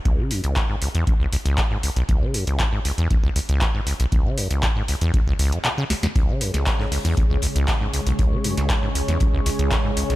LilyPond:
<<
  \new Staff \with { instrumentName = "Analog synth pad" } { \time 4/4 \key cis \minor \tempo 4 = 118 r1 | r1 | r1 | <cis gis gis' cis''>1~ |
<cis gis gis' cis''>1 | }
  \new Staff \with { instrumentName = "Acid bass" } { \clef bass \time 4/4 \key cis \minor cis,16 cis16 fis,16 cis,16 dis,16 gis,16 cis,16 e,16 cis,16 cis,16 cis,16 cis,16 dis,16 gis,16 cis,16 b,,16 | cis,16 cis16 fis,16 cis,16 dis,16 gis,16 cis,16 e,16 r16 cis,16 cis,16 cis,16 dis,16 gis,16 cis,16 b,,16 | cis,16 cis16 fis,16 cis,16 dis,16 gis,16 cis,16 e,16 cis,16 cis,16 cis,16 fis,16 b,16 cis16 cis,16 e,16 | cis,16 cis16 fis,16 cis,16 dis,16 gis,16 cis,16 e,16 r16 cis,16 cis,16 cis,16 dis,16 gis,16 cis,16 b,,16 |
cis,16 cis16 fis,16 cis,16 dis,16 gis,16 cis,16 e,16 cis,16 cis,16 cis,16 cis,16 dis,16 gis,16 cis,16 b,,16 | }
  \new DrumStaff \with { instrumentName = "Drums" } \drummode { \time 4/4 <hh bd>8 hho16 hh16 <hc hh bd>8 hho16 hh16 <hh bd>8 hho16 hh16 <hc hh bd>8 hho16 hh16 | <hh bd>8 hho16 hh16 <hc hh bd>8 hho16 hh16 <hh bd>8 hho16 hh16 <hc hh bd>8 hho16 hh16 | <hh bd>8 hho16 hh16 <hc hh bd>8 hho16 hh16 <hh bd>8 hho16 hh16 <hc hh>8 <hho sn>16 <hh sn>16 | <hh bd>8 <hh hho>16 <hh sn>16 <hc hh bd sn>16 sn16 hho16 <hh sn>16 <hh bd>8 <hh hho>16 hh16 <hc hh bd sn>8 <hh hho>16 hh16 |
<hh bd>8 <hh hho>16 <hh sn>16 <hc hh bd sn>8 <hh hho>16 <hh sn>16 <hh bd>8 <hh hho>16 hh16 <hc hh bd sn>8 <hh hho>16 <hh sn>16 | }
>>